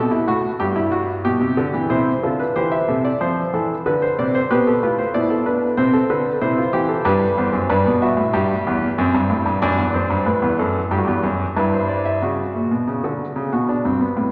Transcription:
grand piano
Already playing: B2 A4
0.11 E4
0.28 A2 F#4
0.60 G2 G4
0.76 E4
0.92 F#4
1.25 B2 G4
1.41 C3
1.57 D3
1.74 E3
1.90 C3 E4 C5
2.23 D3 F4 A4
2.40 B4
2.56 E3 G4 C5
2.72 E5
2.88 C3 A4
3.05 D5
3.21 F3 C5
3.54 E3 A4
3.86 D3 B4
4.02 C5
4.19 C3 D5
4.35 C5
4.50 B2 G4 B4
4.67 A4
4.83 A2 F4 B4
4.98 C5
5.14 B2 E4 D5
5.30 A4
5.46 D4 B4
5.77 C3 C4 C5
5.93 A4
6.10 D3 B4
6.41 C3 E4 C5
6.58 F4
6.73 E3 G4
6.89 A4
7.05 G2 G4 B4
7.37 E2 C5
7.53 F#2
7.69 G2 B4 D5
7.86 B2
8.02 F#4 E5
8.17 A2
8.33 G2 G4
8.67 E2
8.98 F#2 C4
9.14 G2
9.30 A2
9.46 G2
9.62 F#2 D4 D5
9.78 E2
9.94 F#2 C5
10.10 G2
10.26 A2 B4
10.42 E2
10.59 F#2 A4
10.91 G2 G4
10.98 F#4
11.05 E2 G4
11.23 F#2
11.56 G2 E4 B4
11.73 C5
11.89 D5
12.05 E5
12.22 C#3 F#4
12.55 A#2
12.71 B2
12.87 C#3
13.04 D3
13.36 C#3
13.53 B2 F#4
13.69 D4
13.85 G2 C4
14.01 B3
14.17 A2

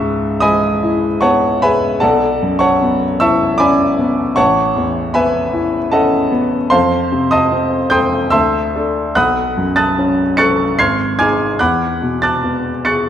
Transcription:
grand piano
Already playing: C#2 E5 A5 C#6 E6
0.01 G#2
0.40 G#3 D#5 G#5 B5 D#6
0.83 E4
1.21 B3 C#5 F#5 A5 C#6
1.62 G#3 B4 E5 G#5 B5
2.00 B1 A4 D5 F#5 A5
2.43 F#2
2.59 C#5 F#5 A5 C#6
2.82 B3
3.20 E4 E5 A5 C#6 E6
3.58 C#4 D5 G#5 B5 D6
3.99 B3
4.36 A1 C#5 F#5 A5 C#6
4.76 E2
5.14 B3 B4 E5 G#5 B5
5.53 E4
5.92 C#4 A4 D#5 F#5 A5
6.31 B3
6.70 F2 C5 F5 A5 C6
7.12 C3
7.31 D#5 A5 C6 D#6
7.52 C4
7.90 A4 G5 C6 D#6 G6
8.30 D2 E5 A5 C6 E6
8.75 D4 A4
9.15 B1 F#5 B5 D#6 F#6
9.57 F#2
9.76 A5 D#6 F#6 A6
9.98 C#4
10.37 A4 C#6 F#6 A6 C#7
10.79 G#1 C6 F6 G#6 C7
11.19 D#4 G#4 G#5 D6 F6 G#6
11.59 E2 F#5 B5 D6 F#6
12.02 B2
12.22 A5 D6 F#6 A6
12.43 B3
12.85 G#4 C#6 F#6 A6 C#7

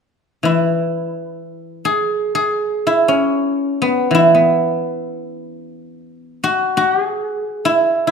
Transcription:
guzheng
0.43 E3 E4
1.85 G#4
2.35 G#4
2.87 E4
3.08 C#4
3.82 B3
4.11 E3 E4
4.35 B3
6.44 F#4
6.77 F#4
7.03 G#4
7.65 E4
8.07 E4

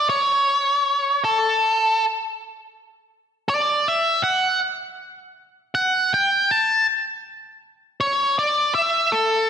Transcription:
lead electric guitar
0.09 C#5
1.24 A4
3.49 D5
3.88 E5
4.24 F#5
5.75 F#5
6.14 G5
6.51 A5
8.01 C#5
8.39 D5
8.75 E5
9.12 A4

